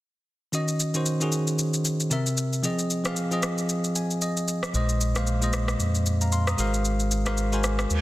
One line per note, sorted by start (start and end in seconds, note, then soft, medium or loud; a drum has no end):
0.52 0.85 D#3 medium
0.52 0.86 C#4 medium
0.52 0.86 F#4 medium
0.52 0.86 D#5 medium
0.52 shaker medium
0.68 shaker soft
0.80 shaker medium
0.94 1.15 D#3 medium
0.94 1.15 C#4 medium
0.94 1.15 F#4 medium
0.94 1.16 C5 medium
0.94 shaker medium
1.06 shaker medium
1.20 2.04 D#3 medium
1.20 2.04 C#4 medium
1.20 2.05 F#4 medium
1.20 2.05 G#4 medium
1.20 shaker medium
1.32 shaker medium
1.47 shaker soft
1.59 shaker medium
1.74 shaker medium
1.85 shaker medium
2.00 shaker medium
2.10 2.54 C3 medium
2.10 2.55 C4 medium
2.10 2.55 A#4 medium
2.10 2.56 E5 medium
2.10 shaker medium
2.26 shaker medium
2.37 shaker medium
2.53 shaker soft
2.63 2.96 F3 medium
2.63 2.96 C4 medium
2.63 2.96 G#4 medium
2.63 2.97 D#5 medium
2.63 shaker medium
2.79 shaker soft
2.90 shaker medium
3.04 3.25 F3 medium
3.04 3.25 C4 medium
3.04 3.26 G#4 medium
3.04 3.26 F5 medium
3.04 cross-stick medium
3.04 shaker medium
3.16 shaker medium
3.31 4.14 F3 medium
3.31 4.15 C4 medium
3.31 4.15 G#4 medium
3.31 4.16 D#5 medium
3.31 shaker medium
3.43 cross-stick medium
3.43 shaker medium
3.58 shaker soft
3.69 shaker medium
3.84 shaker medium
3.95 4.20 G#5 medium
3.95 shaker medium
4.11 shaker medium
4.21 4.71 D#5 medium
4.21 shaker medium
4.37 shaker medium
4.48 shaker medium
4.63 cross-stick medium
4.63 shaker soft
4.73 5.75 A#1 loud
4.73 5.06 A#2 medium
4.73 5.07 G#3 medium
4.73 5.07 C5 medium
4.73 5.07 D#5 medium
4.73 shaker medium
4.89 shaker soft
5.01 shaker medium
5.15 5.36 A#2 medium
5.15 5.36 G#3 medium
5.15 5.36 C5 medium
5.15 5.37 F5 medium
5.15 cross-stick medium
5.15 shaker medium
5.27 shaker medium
5.41 6.25 A#2 medium
5.41 6.25 G#3 medium
5.41 6.26 C5 medium
5.41 6.26 D#5 medium
5.41 shaker medium
5.53 cross-stick medium
5.53 shaker medium
5.68 cross-stick medium
5.68 shaker soft
5.79 6.54 F2 medium
5.79 shaker medium
5.95 shaker medium
6.06 shaker medium
6.21 6.32 F5 medium
6.21 6.32 A#5 medium
6.21 shaker medium
6.32 6.47 F5 medium
6.32 6.47 C6 medium
6.32 shaker medium
6.47 6.73 A#5 medium
6.47 6.73 D#6 medium
6.47 cross-stick medium
6.47 shaker medium
6.57 7.86 G#1 medium
6.57 7.11 G#3 medium
6.57 7.11 F#4 medium
6.57 7.11 A#4 medium
6.57 7.12 C5 medium
6.57 7.12 F5 loud
6.57 shaker medium
6.74 shaker soft
6.85 shaker medium
7.00 shaker soft
7.11 shaker medium
7.25 7.46 G#3 medium
7.25 7.46 F#4 medium
7.25 7.47 A#4 medium
7.25 7.47 C5 medium
7.25 7.47 F5 medium
7.25 cross-stick medium
7.25 shaker medium
7.37 shaker medium
7.52 8.01 G#3 medium
7.52 8.01 F#4 medium
7.52 8.01 A#4 medium
7.52 8.01 C5 medium
7.52 8.01 G#5 medium
7.52 shaker medium
7.64 cross-stick medium
7.64 shaker medium
7.79 cross-stick loud
7.79 shaker soft
7.90 8.01 D#2 loud
7.90 reverse cymbal medium
7.90 shaker medium